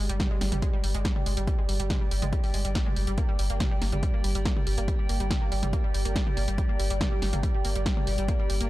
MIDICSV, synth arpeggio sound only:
0, 0, Header, 1, 2, 480
1, 0, Start_track
1, 0, Key_signature, -2, "minor"
1, 0, Tempo, 425532
1, 1664, Time_signature, 4, 2, 24, 8
1, 9810, End_track
2, 0, Start_track
2, 0, Title_t, "Synth arpeggio sound"
2, 0, Program_c, 0, 84
2, 106, Note_on_c, 0, 55, 75
2, 192, Note_off_c, 0, 55, 0
2, 223, Note_on_c, 0, 55, 81
2, 284, Note_off_c, 0, 55, 0
2, 347, Note_on_c, 0, 56, 77
2, 404, Note_off_c, 0, 56, 0
2, 462, Note_on_c, 0, 55, 77
2, 554, Note_off_c, 0, 55, 0
2, 587, Note_on_c, 0, 55, 78
2, 644, Note_off_c, 0, 55, 0
2, 704, Note_on_c, 0, 56, 86
2, 764, Note_off_c, 0, 56, 0
2, 827, Note_on_c, 0, 55, 80
2, 913, Note_off_c, 0, 55, 0
2, 943, Note_on_c, 0, 55, 75
2, 1004, Note_off_c, 0, 55, 0
2, 1067, Note_on_c, 0, 56, 80
2, 1124, Note_off_c, 0, 56, 0
2, 1184, Note_on_c, 0, 55, 88
2, 1274, Note_off_c, 0, 55, 0
2, 1308, Note_on_c, 0, 55, 76
2, 1365, Note_off_c, 0, 55, 0
2, 1424, Note_on_c, 0, 56, 71
2, 1484, Note_off_c, 0, 56, 0
2, 1547, Note_on_c, 0, 55, 78
2, 1633, Note_off_c, 0, 55, 0
2, 1663, Note_on_c, 0, 55, 89
2, 1724, Note_off_c, 0, 55, 0
2, 1787, Note_on_c, 0, 56, 77
2, 1844, Note_off_c, 0, 56, 0
2, 1903, Note_on_c, 0, 55, 75
2, 1994, Note_off_c, 0, 55, 0
2, 2027, Note_on_c, 0, 55, 76
2, 2084, Note_off_c, 0, 55, 0
2, 2145, Note_on_c, 0, 56, 81
2, 2205, Note_off_c, 0, 56, 0
2, 2268, Note_on_c, 0, 55, 77
2, 2353, Note_off_c, 0, 55, 0
2, 2383, Note_on_c, 0, 55, 76
2, 2444, Note_off_c, 0, 55, 0
2, 2507, Note_on_c, 0, 56, 76
2, 2564, Note_off_c, 0, 56, 0
2, 2624, Note_on_c, 0, 55, 86
2, 2714, Note_off_c, 0, 55, 0
2, 2748, Note_on_c, 0, 55, 80
2, 2804, Note_off_c, 0, 55, 0
2, 2864, Note_on_c, 0, 56, 74
2, 2924, Note_off_c, 0, 56, 0
2, 2988, Note_on_c, 0, 55, 74
2, 3073, Note_off_c, 0, 55, 0
2, 3103, Note_on_c, 0, 55, 84
2, 3164, Note_off_c, 0, 55, 0
2, 3228, Note_on_c, 0, 56, 73
2, 3285, Note_off_c, 0, 56, 0
2, 3344, Note_on_c, 0, 55, 73
2, 3435, Note_off_c, 0, 55, 0
2, 3467, Note_on_c, 0, 55, 81
2, 3524, Note_off_c, 0, 55, 0
2, 3584, Note_on_c, 0, 58, 85
2, 3675, Note_off_c, 0, 58, 0
2, 3707, Note_on_c, 0, 55, 84
2, 3793, Note_off_c, 0, 55, 0
2, 3825, Note_on_c, 0, 55, 79
2, 3885, Note_off_c, 0, 55, 0
2, 3949, Note_on_c, 0, 58, 75
2, 4034, Note_off_c, 0, 58, 0
2, 4066, Note_on_c, 0, 55, 85
2, 4155, Note_off_c, 0, 55, 0
2, 4187, Note_on_c, 0, 55, 83
2, 4244, Note_off_c, 0, 55, 0
2, 4304, Note_on_c, 0, 58, 78
2, 4395, Note_off_c, 0, 58, 0
2, 4428, Note_on_c, 0, 55, 79
2, 4513, Note_off_c, 0, 55, 0
2, 4545, Note_on_c, 0, 55, 86
2, 4605, Note_off_c, 0, 55, 0
2, 4668, Note_on_c, 0, 58, 78
2, 4753, Note_off_c, 0, 58, 0
2, 4785, Note_on_c, 0, 55, 74
2, 4875, Note_off_c, 0, 55, 0
2, 4909, Note_on_c, 0, 55, 81
2, 4965, Note_off_c, 0, 55, 0
2, 5025, Note_on_c, 0, 58, 88
2, 5115, Note_off_c, 0, 58, 0
2, 5150, Note_on_c, 0, 55, 76
2, 5234, Note_off_c, 0, 55, 0
2, 5265, Note_on_c, 0, 55, 77
2, 5325, Note_off_c, 0, 55, 0
2, 5390, Note_on_c, 0, 58, 77
2, 5474, Note_off_c, 0, 58, 0
2, 5506, Note_on_c, 0, 55, 85
2, 5595, Note_off_c, 0, 55, 0
2, 5628, Note_on_c, 0, 55, 81
2, 5685, Note_off_c, 0, 55, 0
2, 5746, Note_on_c, 0, 58, 79
2, 5835, Note_off_c, 0, 58, 0
2, 5867, Note_on_c, 0, 55, 77
2, 5953, Note_off_c, 0, 55, 0
2, 5985, Note_on_c, 0, 55, 82
2, 6045, Note_off_c, 0, 55, 0
2, 6108, Note_on_c, 0, 58, 78
2, 6193, Note_off_c, 0, 58, 0
2, 6224, Note_on_c, 0, 55, 78
2, 6315, Note_off_c, 0, 55, 0
2, 6347, Note_on_c, 0, 55, 76
2, 6404, Note_off_c, 0, 55, 0
2, 6463, Note_on_c, 0, 58, 85
2, 6554, Note_off_c, 0, 58, 0
2, 6588, Note_on_c, 0, 55, 79
2, 6673, Note_off_c, 0, 55, 0
2, 6703, Note_on_c, 0, 55, 75
2, 6764, Note_off_c, 0, 55, 0
2, 6827, Note_on_c, 0, 58, 75
2, 6913, Note_off_c, 0, 58, 0
2, 6944, Note_on_c, 0, 55, 82
2, 7034, Note_off_c, 0, 55, 0
2, 7067, Note_on_c, 0, 55, 77
2, 7124, Note_off_c, 0, 55, 0
2, 7184, Note_on_c, 0, 58, 78
2, 7275, Note_off_c, 0, 58, 0
2, 7308, Note_on_c, 0, 55, 79
2, 7393, Note_off_c, 0, 55, 0
2, 7424, Note_on_c, 0, 55, 88
2, 7485, Note_off_c, 0, 55, 0
2, 7547, Note_on_c, 0, 58, 82
2, 7633, Note_off_c, 0, 58, 0
2, 7665, Note_on_c, 0, 55, 74
2, 7755, Note_off_c, 0, 55, 0
2, 7789, Note_on_c, 0, 55, 76
2, 7845, Note_off_c, 0, 55, 0
2, 7906, Note_on_c, 0, 58, 79
2, 7996, Note_off_c, 0, 58, 0
2, 8030, Note_on_c, 0, 55, 81
2, 8114, Note_off_c, 0, 55, 0
2, 8145, Note_on_c, 0, 55, 74
2, 8205, Note_off_c, 0, 55, 0
2, 8270, Note_on_c, 0, 58, 80
2, 8354, Note_off_c, 0, 58, 0
2, 8387, Note_on_c, 0, 55, 86
2, 8476, Note_off_c, 0, 55, 0
2, 8511, Note_on_c, 0, 55, 77
2, 8566, Note_off_c, 0, 55, 0
2, 8629, Note_on_c, 0, 58, 76
2, 8717, Note_off_c, 0, 58, 0
2, 8751, Note_on_c, 0, 55, 78
2, 8834, Note_off_c, 0, 55, 0
2, 8868, Note_on_c, 0, 55, 84
2, 8926, Note_off_c, 0, 55, 0
2, 8992, Note_on_c, 0, 58, 77
2, 9075, Note_off_c, 0, 58, 0
2, 9107, Note_on_c, 0, 55, 77
2, 9196, Note_off_c, 0, 55, 0
2, 9230, Note_on_c, 0, 55, 80
2, 9285, Note_off_c, 0, 55, 0
2, 9346, Note_on_c, 0, 58, 86
2, 9436, Note_off_c, 0, 58, 0
2, 9468, Note_on_c, 0, 55, 80
2, 9553, Note_off_c, 0, 55, 0
2, 9584, Note_on_c, 0, 55, 75
2, 9644, Note_off_c, 0, 55, 0
2, 9709, Note_on_c, 0, 58, 80
2, 9794, Note_off_c, 0, 58, 0
2, 9810, End_track
0, 0, End_of_file